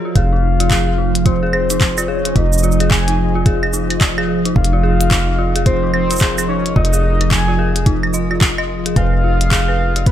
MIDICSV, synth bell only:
0, 0, Header, 1, 2, 480
1, 0, Start_track
1, 0, Key_signature, -4, "minor"
1, 0, Tempo, 550459
1, 136, Time_signature, 4, 2, 24, 8
1, 8822, End_track
2, 0, Start_track
2, 0, Title_t, "Synth bell"
2, 0, Program_c, 0, 98
2, 44, Note_on_c, 0, 65, 73
2, 131, Note_off_c, 0, 65, 0
2, 135, Note_on_c, 0, 68, 85
2, 196, Note_off_c, 0, 68, 0
2, 284, Note_on_c, 0, 63, 76
2, 347, Note_off_c, 0, 63, 0
2, 524, Note_on_c, 0, 65, 102
2, 611, Note_off_c, 0, 65, 0
2, 615, Note_on_c, 0, 68, 103
2, 754, Note_off_c, 0, 68, 0
2, 765, Note_on_c, 0, 68, 75
2, 802, Note_off_c, 0, 68, 0
2, 856, Note_on_c, 0, 63, 76
2, 957, Note_off_c, 0, 63, 0
2, 1095, Note_on_c, 0, 65, 104
2, 1237, Note_off_c, 0, 65, 0
2, 1244, Note_on_c, 0, 68, 104
2, 1325, Note_off_c, 0, 68, 0
2, 1335, Note_on_c, 0, 68, 79
2, 1397, Note_off_c, 0, 68, 0
2, 1484, Note_on_c, 0, 63, 75
2, 1546, Note_off_c, 0, 63, 0
2, 1724, Note_on_c, 0, 65, 102
2, 1811, Note_off_c, 0, 65, 0
2, 1815, Note_on_c, 0, 68, 102
2, 1953, Note_off_c, 0, 68, 0
2, 1964, Note_on_c, 0, 68, 75
2, 2002, Note_off_c, 0, 68, 0
2, 2056, Note_on_c, 0, 63, 87
2, 2157, Note_off_c, 0, 63, 0
2, 2296, Note_on_c, 0, 65, 102
2, 2437, Note_off_c, 0, 65, 0
2, 2445, Note_on_c, 0, 68, 103
2, 2525, Note_off_c, 0, 68, 0
2, 2685, Note_on_c, 0, 63, 77
2, 2747, Note_off_c, 0, 63, 0
2, 2924, Note_on_c, 0, 65, 101
2, 3011, Note_off_c, 0, 65, 0
2, 3016, Note_on_c, 0, 68, 103
2, 3154, Note_off_c, 0, 68, 0
2, 3164, Note_on_c, 0, 68, 78
2, 3202, Note_off_c, 0, 68, 0
2, 3255, Note_on_c, 0, 63, 78
2, 3357, Note_off_c, 0, 63, 0
2, 3495, Note_on_c, 0, 65, 98
2, 3637, Note_off_c, 0, 65, 0
2, 3644, Note_on_c, 0, 68, 99
2, 3725, Note_off_c, 0, 68, 0
2, 3735, Note_on_c, 0, 68, 76
2, 3796, Note_off_c, 0, 68, 0
2, 3884, Note_on_c, 0, 63, 79
2, 3947, Note_off_c, 0, 63, 0
2, 4124, Note_on_c, 0, 65, 101
2, 4211, Note_off_c, 0, 65, 0
2, 4215, Note_on_c, 0, 68, 104
2, 4354, Note_off_c, 0, 68, 0
2, 4365, Note_on_c, 0, 68, 80
2, 4402, Note_off_c, 0, 68, 0
2, 4455, Note_on_c, 0, 63, 84
2, 4557, Note_off_c, 0, 63, 0
2, 4695, Note_on_c, 0, 65, 102
2, 4837, Note_off_c, 0, 65, 0
2, 4844, Note_on_c, 0, 68, 96
2, 4925, Note_off_c, 0, 68, 0
2, 4935, Note_on_c, 0, 68, 87
2, 4996, Note_off_c, 0, 68, 0
2, 5084, Note_on_c, 0, 63, 80
2, 5146, Note_off_c, 0, 63, 0
2, 5324, Note_on_c, 0, 65, 98
2, 5411, Note_off_c, 0, 65, 0
2, 5415, Note_on_c, 0, 68, 104
2, 5553, Note_off_c, 0, 68, 0
2, 5564, Note_on_c, 0, 68, 76
2, 5602, Note_off_c, 0, 68, 0
2, 5655, Note_on_c, 0, 63, 74
2, 5757, Note_off_c, 0, 63, 0
2, 5895, Note_on_c, 0, 65, 108
2, 6037, Note_off_c, 0, 65, 0
2, 6044, Note_on_c, 0, 68, 102
2, 6125, Note_off_c, 0, 68, 0
2, 6135, Note_on_c, 0, 68, 79
2, 6196, Note_off_c, 0, 68, 0
2, 6284, Note_on_c, 0, 63, 75
2, 6346, Note_off_c, 0, 63, 0
2, 6524, Note_on_c, 0, 65, 100
2, 6611, Note_off_c, 0, 65, 0
2, 6616, Note_on_c, 0, 68, 104
2, 6754, Note_off_c, 0, 68, 0
2, 6764, Note_on_c, 0, 68, 75
2, 6802, Note_off_c, 0, 68, 0
2, 6856, Note_on_c, 0, 63, 86
2, 6957, Note_off_c, 0, 63, 0
2, 7095, Note_on_c, 0, 75, 81
2, 7197, Note_off_c, 0, 75, 0
2, 7244, Note_on_c, 0, 65, 75
2, 7307, Note_off_c, 0, 65, 0
2, 7485, Note_on_c, 0, 75, 101
2, 7522, Note_off_c, 0, 75, 0
2, 7725, Note_on_c, 0, 68, 76
2, 7787, Note_off_c, 0, 68, 0
2, 7816, Note_on_c, 0, 71, 105
2, 7954, Note_off_c, 0, 71, 0
2, 7964, Note_on_c, 0, 71, 75
2, 8002, Note_off_c, 0, 71, 0
2, 8056, Note_on_c, 0, 65, 77
2, 8157, Note_off_c, 0, 65, 0
2, 8295, Note_on_c, 0, 68, 101
2, 8437, Note_off_c, 0, 68, 0
2, 8444, Note_on_c, 0, 71, 99
2, 8525, Note_off_c, 0, 71, 0
2, 8536, Note_on_c, 0, 71, 77
2, 8597, Note_off_c, 0, 71, 0
2, 8685, Note_on_c, 0, 65, 72
2, 8747, Note_off_c, 0, 65, 0
2, 8822, End_track
0, 0, End_of_file